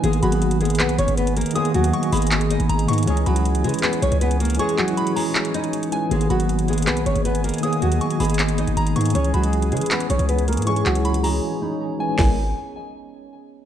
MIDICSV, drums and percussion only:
0, 0, Header, 1, 2, 480
1, 0, Start_track
1, 0, Key_signature, 5, "minor"
1, 0, Tempo, 379747
1, 46, Time_signature, 4, 2, 24, 8
1, 17257, End_track
2, 0, Start_track
2, 0, Title_t, "Drums"
2, 46, Note_on_c, 9, 42, 78
2, 166, Note_off_c, 9, 42, 0
2, 166, Note_on_c, 9, 42, 56
2, 285, Note_off_c, 9, 42, 0
2, 285, Note_on_c, 9, 42, 58
2, 407, Note_off_c, 9, 42, 0
2, 407, Note_on_c, 9, 42, 84
2, 527, Note_off_c, 9, 42, 0
2, 527, Note_on_c, 9, 42, 64
2, 645, Note_off_c, 9, 42, 0
2, 645, Note_on_c, 9, 42, 61
2, 766, Note_off_c, 9, 42, 0
2, 766, Note_on_c, 9, 42, 50
2, 826, Note_off_c, 9, 42, 0
2, 826, Note_on_c, 9, 42, 63
2, 886, Note_off_c, 9, 42, 0
2, 886, Note_on_c, 9, 42, 74
2, 946, Note_off_c, 9, 42, 0
2, 946, Note_on_c, 9, 42, 85
2, 1005, Note_on_c, 9, 39, 127
2, 1007, Note_off_c, 9, 42, 0
2, 1007, Note_on_c, 9, 42, 90
2, 1125, Note_off_c, 9, 42, 0
2, 1125, Note_on_c, 9, 42, 65
2, 1131, Note_off_c, 9, 39, 0
2, 1245, Note_off_c, 9, 42, 0
2, 1245, Note_on_c, 9, 42, 91
2, 1364, Note_off_c, 9, 42, 0
2, 1364, Note_on_c, 9, 42, 56
2, 1485, Note_off_c, 9, 42, 0
2, 1485, Note_on_c, 9, 42, 80
2, 1607, Note_off_c, 9, 42, 0
2, 1607, Note_on_c, 9, 42, 62
2, 1726, Note_off_c, 9, 42, 0
2, 1726, Note_on_c, 9, 42, 72
2, 1785, Note_off_c, 9, 42, 0
2, 1785, Note_on_c, 9, 42, 72
2, 1845, Note_off_c, 9, 42, 0
2, 1845, Note_on_c, 9, 42, 74
2, 1906, Note_off_c, 9, 42, 0
2, 1906, Note_on_c, 9, 42, 72
2, 1966, Note_off_c, 9, 42, 0
2, 1966, Note_on_c, 9, 42, 79
2, 2086, Note_off_c, 9, 42, 0
2, 2086, Note_on_c, 9, 42, 58
2, 2205, Note_off_c, 9, 42, 0
2, 2205, Note_on_c, 9, 42, 58
2, 2326, Note_off_c, 9, 42, 0
2, 2326, Note_on_c, 9, 42, 83
2, 2445, Note_off_c, 9, 42, 0
2, 2445, Note_on_c, 9, 42, 63
2, 2564, Note_off_c, 9, 42, 0
2, 2564, Note_on_c, 9, 42, 58
2, 2685, Note_off_c, 9, 42, 0
2, 2685, Note_on_c, 9, 42, 52
2, 2687, Note_on_c, 9, 46, 92
2, 2745, Note_off_c, 9, 42, 0
2, 2745, Note_on_c, 9, 42, 60
2, 2806, Note_off_c, 9, 42, 0
2, 2806, Note_on_c, 9, 42, 72
2, 2813, Note_off_c, 9, 46, 0
2, 2865, Note_off_c, 9, 42, 0
2, 2865, Note_on_c, 9, 42, 82
2, 2925, Note_on_c, 9, 39, 124
2, 2927, Note_off_c, 9, 42, 0
2, 2927, Note_on_c, 9, 42, 91
2, 3046, Note_off_c, 9, 42, 0
2, 3046, Note_on_c, 9, 42, 69
2, 3051, Note_off_c, 9, 39, 0
2, 3166, Note_off_c, 9, 42, 0
2, 3166, Note_on_c, 9, 42, 90
2, 3284, Note_off_c, 9, 42, 0
2, 3284, Note_on_c, 9, 42, 58
2, 3406, Note_off_c, 9, 42, 0
2, 3406, Note_on_c, 9, 42, 82
2, 3527, Note_off_c, 9, 42, 0
2, 3527, Note_on_c, 9, 42, 62
2, 3646, Note_off_c, 9, 42, 0
2, 3646, Note_on_c, 9, 42, 71
2, 3706, Note_off_c, 9, 42, 0
2, 3706, Note_on_c, 9, 42, 70
2, 3766, Note_off_c, 9, 42, 0
2, 3766, Note_on_c, 9, 42, 72
2, 3826, Note_off_c, 9, 42, 0
2, 3826, Note_on_c, 9, 42, 73
2, 3886, Note_off_c, 9, 42, 0
2, 3886, Note_on_c, 9, 42, 79
2, 4006, Note_off_c, 9, 42, 0
2, 4006, Note_on_c, 9, 42, 57
2, 4125, Note_off_c, 9, 42, 0
2, 4125, Note_on_c, 9, 42, 57
2, 4247, Note_off_c, 9, 42, 0
2, 4247, Note_on_c, 9, 42, 83
2, 4366, Note_off_c, 9, 42, 0
2, 4366, Note_on_c, 9, 42, 63
2, 4485, Note_off_c, 9, 42, 0
2, 4485, Note_on_c, 9, 42, 60
2, 4605, Note_off_c, 9, 42, 0
2, 4605, Note_on_c, 9, 42, 51
2, 4666, Note_off_c, 9, 42, 0
2, 4666, Note_on_c, 9, 42, 62
2, 4726, Note_off_c, 9, 42, 0
2, 4726, Note_on_c, 9, 42, 73
2, 4785, Note_off_c, 9, 42, 0
2, 4785, Note_on_c, 9, 42, 84
2, 4845, Note_on_c, 9, 39, 127
2, 4847, Note_off_c, 9, 42, 0
2, 4847, Note_on_c, 9, 42, 89
2, 4965, Note_off_c, 9, 42, 0
2, 4965, Note_on_c, 9, 42, 67
2, 4971, Note_off_c, 9, 39, 0
2, 5086, Note_off_c, 9, 42, 0
2, 5086, Note_on_c, 9, 42, 88
2, 5204, Note_off_c, 9, 42, 0
2, 5204, Note_on_c, 9, 42, 56
2, 5325, Note_off_c, 9, 42, 0
2, 5325, Note_on_c, 9, 42, 82
2, 5447, Note_off_c, 9, 42, 0
2, 5447, Note_on_c, 9, 42, 63
2, 5565, Note_off_c, 9, 42, 0
2, 5565, Note_on_c, 9, 42, 73
2, 5626, Note_off_c, 9, 42, 0
2, 5626, Note_on_c, 9, 42, 70
2, 5686, Note_off_c, 9, 42, 0
2, 5686, Note_on_c, 9, 42, 73
2, 5746, Note_off_c, 9, 42, 0
2, 5746, Note_on_c, 9, 42, 70
2, 5806, Note_off_c, 9, 42, 0
2, 5806, Note_on_c, 9, 42, 79
2, 5927, Note_off_c, 9, 42, 0
2, 5927, Note_on_c, 9, 42, 57
2, 6045, Note_off_c, 9, 42, 0
2, 6045, Note_on_c, 9, 42, 54
2, 6047, Note_on_c, 9, 39, 93
2, 6167, Note_off_c, 9, 42, 0
2, 6167, Note_on_c, 9, 42, 83
2, 6174, Note_off_c, 9, 39, 0
2, 6287, Note_off_c, 9, 42, 0
2, 6287, Note_on_c, 9, 42, 65
2, 6405, Note_off_c, 9, 42, 0
2, 6405, Note_on_c, 9, 42, 59
2, 6528, Note_on_c, 9, 46, 89
2, 6531, Note_off_c, 9, 42, 0
2, 6655, Note_off_c, 9, 46, 0
2, 6766, Note_on_c, 9, 39, 127
2, 6768, Note_on_c, 9, 42, 86
2, 6887, Note_off_c, 9, 42, 0
2, 6887, Note_on_c, 9, 42, 68
2, 6892, Note_off_c, 9, 39, 0
2, 7007, Note_off_c, 9, 42, 0
2, 7007, Note_on_c, 9, 42, 89
2, 7125, Note_off_c, 9, 42, 0
2, 7125, Note_on_c, 9, 42, 57
2, 7246, Note_off_c, 9, 42, 0
2, 7246, Note_on_c, 9, 42, 85
2, 7367, Note_off_c, 9, 42, 0
2, 7367, Note_on_c, 9, 42, 63
2, 7486, Note_off_c, 9, 42, 0
2, 7486, Note_on_c, 9, 42, 82
2, 7612, Note_off_c, 9, 42, 0
2, 7727, Note_on_c, 9, 42, 77
2, 7847, Note_off_c, 9, 42, 0
2, 7847, Note_on_c, 9, 42, 56
2, 7966, Note_off_c, 9, 42, 0
2, 7966, Note_on_c, 9, 42, 53
2, 8087, Note_off_c, 9, 42, 0
2, 8087, Note_on_c, 9, 42, 79
2, 8207, Note_off_c, 9, 42, 0
2, 8207, Note_on_c, 9, 42, 61
2, 8326, Note_off_c, 9, 42, 0
2, 8326, Note_on_c, 9, 42, 58
2, 8447, Note_off_c, 9, 42, 0
2, 8447, Note_on_c, 9, 42, 50
2, 8506, Note_off_c, 9, 42, 0
2, 8506, Note_on_c, 9, 42, 59
2, 8566, Note_off_c, 9, 42, 0
2, 8566, Note_on_c, 9, 42, 72
2, 8626, Note_off_c, 9, 42, 0
2, 8626, Note_on_c, 9, 42, 84
2, 8685, Note_on_c, 9, 39, 127
2, 8688, Note_off_c, 9, 42, 0
2, 8688, Note_on_c, 9, 42, 87
2, 8806, Note_off_c, 9, 42, 0
2, 8806, Note_on_c, 9, 42, 65
2, 8812, Note_off_c, 9, 39, 0
2, 8927, Note_off_c, 9, 42, 0
2, 8927, Note_on_c, 9, 42, 84
2, 9044, Note_off_c, 9, 42, 0
2, 9044, Note_on_c, 9, 42, 54
2, 9166, Note_off_c, 9, 42, 0
2, 9166, Note_on_c, 9, 42, 78
2, 9288, Note_off_c, 9, 42, 0
2, 9288, Note_on_c, 9, 42, 64
2, 9406, Note_off_c, 9, 42, 0
2, 9406, Note_on_c, 9, 42, 71
2, 9466, Note_off_c, 9, 42, 0
2, 9466, Note_on_c, 9, 42, 66
2, 9527, Note_off_c, 9, 42, 0
2, 9527, Note_on_c, 9, 42, 71
2, 9586, Note_off_c, 9, 42, 0
2, 9586, Note_on_c, 9, 42, 72
2, 9646, Note_off_c, 9, 42, 0
2, 9646, Note_on_c, 9, 42, 78
2, 9766, Note_off_c, 9, 42, 0
2, 9766, Note_on_c, 9, 42, 56
2, 9885, Note_off_c, 9, 42, 0
2, 9885, Note_on_c, 9, 42, 56
2, 10006, Note_off_c, 9, 42, 0
2, 10006, Note_on_c, 9, 42, 82
2, 10126, Note_off_c, 9, 42, 0
2, 10126, Note_on_c, 9, 42, 63
2, 10244, Note_off_c, 9, 42, 0
2, 10244, Note_on_c, 9, 42, 59
2, 10366, Note_off_c, 9, 42, 0
2, 10366, Note_on_c, 9, 42, 48
2, 10368, Note_on_c, 9, 46, 85
2, 10425, Note_off_c, 9, 42, 0
2, 10425, Note_on_c, 9, 42, 60
2, 10486, Note_off_c, 9, 42, 0
2, 10486, Note_on_c, 9, 42, 71
2, 10494, Note_off_c, 9, 46, 0
2, 10545, Note_off_c, 9, 42, 0
2, 10545, Note_on_c, 9, 42, 83
2, 10604, Note_on_c, 9, 39, 126
2, 10607, Note_off_c, 9, 42, 0
2, 10607, Note_on_c, 9, 42, 88
2, 10725, Note_off_c, 9, 42, 0
2, 10725, Note_on_c, 9, 42, 64
2, 10731, Note_off_c, 9, 39, 0
2, 10846, Note_off_c, 9, 42, 0
2, 10846, Note_on_c, 9, 42, 88
2, 10964, Note_off_c, 9, 42, 0
2, 10964, Note_on_c, 9, 42, 54
2, 11085, Note_off_c, 9, 42, 0
2, 11085, Note_on_c, 9, 42, 80
2, 11206, Note_off_c, 9, 42, 0
2, 11206, Note_on_c, 9, 42, 62
2, 11325, Note_off_c, 9, 42, 0
2, 11325, Note_on_c, 9, 42, 69
2, 11385, Note_off_c, 9, 42, 0
2, 11385, Note_on_c, 9, 42, 72
2, 11445, Note_off_c, 9, 42, 0
2, 11445, Note_on_c, 9, 42, 70
2, 11505, Note_off_c, 9, 42, 0
2, 11505, Note_on_c, 9, 42, 68
2, 11565, Note_off_c, 9, 42, 0
2, 11565, Note_on_c, 9, 42, 74
2, 11685, Note_off_c, 9, 42, 0
2, 11685, Note_on_c, 9, 42, 55
2, 11804, Note_off_c, 9, 42, 0
2, 11804, Note_on_c, 9, 42, 56
2, 11926, Note_off_c, 9, 42, 0
2, 11926, Note_on_c, 9, 42, 83
2, 12046, Note_off_c, 9, 42, 0
2, 12046, Note_on_c, 9, 42, 61
2, 12164, Note_off_c, 9, 42, 0
2, 12164, Note_on_c, 9, 42, 58
2, 12285, Note_off_c, 9, 42, 0
2, 12285, Note_on_c, 9, 42, 48
2, 12345, Note_off_c, 9, 42, 0
2, 12345, Note_on_c, 9, 42, 62
2, 12405, Note_off_c, 9, 42, 0
2, 12405, Note_on_c, 9, 42, 75
2, 12465, Note_off_c, 9, 42, 0
2, 12465, Note_on_c, 9, 42, 85
2, 12524, Note_on_c, 9, 39, 126
2, 12526, Note_off_c, 9, 42, 0
2, 12526, Note_on_c, 9, 42, 87
2, 12645, Note_off_c, 9, 42, 0
2, 12645, Note_on_c, 9, 42, 67
2, 12650, Note_off_c, 9, 39, 0
2, 12765, Note_off_c, 9, 42, 0
2, 12765, Note_on_c, 9, 42, 86
2, 12883, Note_off_c, 9, 42, 0
2, 12883, Note_on_c, 9, 42, 56
2, 13004, Note_off_c, 9, 42, 0
2, 13004, Note_on_c, 9, 42, 81
2, 13126, Note_off_c, 9, 42, 0
2, 13126, Note_on_c, 9, 42, 62
2, 13245, Note_off_c, 9, 42, 0
2, 13245, Note_on_c, 9, 42, 68
2, 13305, Note_off_c, 9, 42, 0
2, 13305, Note_on_c, 9, 42, 69
2, 13365, Note_off_c, 9, 42, 0
2, 13365, Note_on_c, 9, 42, 71
2, 13425, Note_off_c, 9, 42, 0
2, 13425, Note_on_c, 9, 42, 72
2, 13485, Note_off_c, 9, 42, 0
2, 13485, Note_on_c, 9, 42, 77
2, 13605, Note_off_c, 9, 42, 0
2, 13605, Note_on_c, 9, 42, 55
2, 13724, Note_off_c, 9, 42, 0
2, 13724, Note_on_c, 9, 42, 54
2, 13726, Note_on_c, 9, 39, 94
2, 13846, Note_off_c, 9, 42, 0
2, 13846, Note_on_c, 9, 42, 80
2, 13852, Note_off_c, 9, 39, 0
2, 13966, Note_off_c, 9, 42, 0
2, 13966, Note_on_c, 9, 42, 63
2, 14084, Note_off_c, 9, 42, 0
2, 14084, Note_on_c, 9, 42, 59
2, 14207, Note_on_c, 9, 46, 90
2, 14210, Note_off_c, 9, 42, 0
2, 14334, Note_off_c, 9, 46, 0
2, 15405, Note_on_c, 9, 36, 104
2, 15405, Note_on_c, 9, 38, 106
2, 15405, Note_on_c, 9, 46, 90
2, 15531, Note_off_c, 9, 36, 0
2, 15532, Note_off_c, 9, 38, 0
2, 15532, Note_off_c, 9, 46, 0
2, 17257, End_track
0, 0, End_of_file